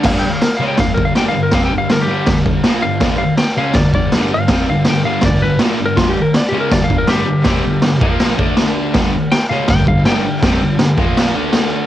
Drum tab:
CC |x-x-x-x-|x-x-x-x-|x-x-x-x-|x-x-x-x-|
SD |o-o-o-o-|o-o-o-o-|o-o-o-o-|o-o-o-o-|
BD |o---oo--|o---oo--|o---oo--|o---o---|

CC |x-x-x-x-|x-x-x-x-|x-x-x-x-|x-x-x-x-|
SD |o-o-o-o-|o-o-o-o-|o-o-o-o-|o-o-o-o-|
BD |o---oo--|o--o-o--|o---oo--|o--o----|